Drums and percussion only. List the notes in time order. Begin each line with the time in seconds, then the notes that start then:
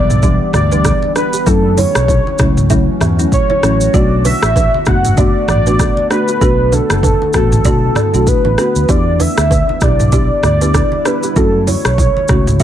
0.10 mid tom, high conga, shaker
0.23 kick, low conga, shaker
0.53 cross-stick, mid tom, high conga, shaker
0.72 shaker
0.85 kick, cross-stick, low conga, shaker
1.02 high conga
1.16 cross-stick, shaker
1.33 shaker
1.47 kick, shaker
1.78 open hi-hat, high conga, shaker
1.95 cross-stick, shaker
2.08 kick, low conga, shaker
2.27 high conga
2.38 kick, cross-stick, low conga, shaker
2.57 mid tom, high conga, shaker
2.70 kick, low conga, shaker
3.01 cross-stick, mid tom, high conga, shaker
3.19 shaker
3.32 kick, low conga, shaker
3.50 high conga
3.63 cross-stick, shaker
3.81 shaker
3.94 kick, shaker
4.25 open hi-hat, high conga, shaker
4.43 cross-stick, shaker
4.56 kick, low conga, shaker
4.74 high conga
4.86 kick, cross-stick, low conga, shaker
5.05 mid tom, high conga, shaker
5.17 kick, low conga, shaker
5.48 cross-stick, mid tom, high conga, shaker
5.66 shaker
5.79 kick, cross-stick, low conga, shaker
5.97 high conga
6.11 cross-stick, shaker
6.28 shaker
6.41 kick, shaker
6.72 high conga, shaker
6.90 cross-stick, shaker
7.03 kick, low conga, shaker
7.22 high conga
7.33 kick, cross-stick, low conga, shaker
7.52 mid tom, high conga, shaker
7.65 kick, low conga, shaker
7.95 cross-stick, mid tom, high conga, shaker
8.14 shaker
8.27 kick, low conga, shaker
8.45 high conga
8.58 cross-stick, shaker
8.76 shaker
8.89 kick, shaker
9.20 open hi-hat, high conga, shaker
9.38 cross-stick, shaker
9.51 kick, low conga, shaker
9.69 high conga
9.81 kick, cross-stick, low conga, shaker
10.00 mid tom, high conga, shaker
10.12 kick, low conga, shaker
10.43 cross-stick, mid tom, high conga, shaker
10.62 shaker
10.74 kick, cross-stick, low conga, shaker
10.92 high conga
11.05 cross-stick, shaker
11.23 shaker
11.36 kick, shaker
11.67 open hi-hat, high conga, shaker
11.85 cross-stick, shaker
11.98 kick, low conga, shaker
12.17 high conga
12.28 kick, cross-stick, low conga, shaker
12.47 mid tom, high conga, shaker
12.60 kick, low conga, shaker